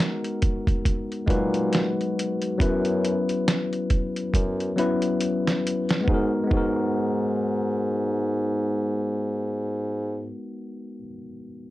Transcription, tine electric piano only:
Already playing: G#3 B3 D#4 F#4 A#4
1.27 F#3 G#3 D#4 F#4 B4
2.58 F#3 B3 C#4 E4 B4
4.76 F#3 B3 C#4 E4 B4
6.01 G#3 B3
6.08 D#4 F#4
6.14 A#4
6.44 G#3 B3
6.51 D#4 F#4
6.57 A#4

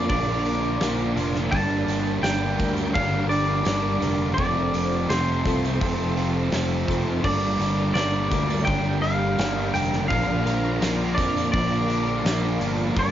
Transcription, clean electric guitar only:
0.09 D5
1.51 A5
2.23 G5
2.94 F5
3.29 D5
4.34 D5
5.09 C5
7.25 D5
7.94 D5
8.65 G5
9.02 F5
9.74 G5
10.08 F5
11.15 D5
11.52 D5
12.99 D5

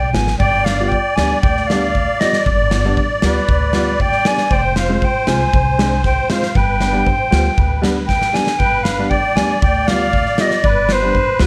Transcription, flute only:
Already playing: G5
0.14 G#5
0.38 G5
0.65 F5
0.88 G5
1.16 G#5
1.41 G5
1.67 F5
2.20 D#5
2.46 D5
3.22 B4
4.01 G5
4.27 G#5
4.53 G5
4.78 F5
5.04 G5
5.28 G#5
6.05 G5
6.31 F5
6.56 G5
8.07 G5
8.34 G#5
8.59 G5
8.83 F5
9.10 G5
9.36 G#5
9.62 G5
9.87 F5
10.41 D#5
10.64 D5
10.92 C5
11.42 B4

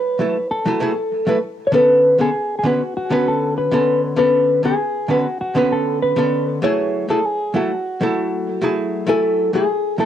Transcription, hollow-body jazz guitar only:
0.19 F#3 A3 E4 A4
0.66 F#3 A3 E4 A4
0.80 F#3 A3 E4 G#4
1.27 F#3 A3 E4 B4
1.72 D3 B3 C#4 A4
2.18 D3 B3 C#4 A4
2.63 D3 B3 C#4 B4
3.10 D3 B3 C#4 B4
3.71 D3 B3 C#4 A4
4.16 D3 B3 C#4 A4
4.63 D3 B3 C#4 A4
5.08 D3 B3 C#4 B4
5.55 D3 B3 C#4 B4
6.16 D3 B3 C#4 A4
6.62 F#3 A3 E4 G#4
7.08 F#3 A3 E4 G#4
7.54 F#3 A3 E4 A4
8.01 F#3 A3 E4 A4
8.61 F#3 A3 E4 G#4
9.07 F#3 A3 E4 G#5
9.53 F#3 A3 E4 G#4
9.98 F#3 A3 E4 A4

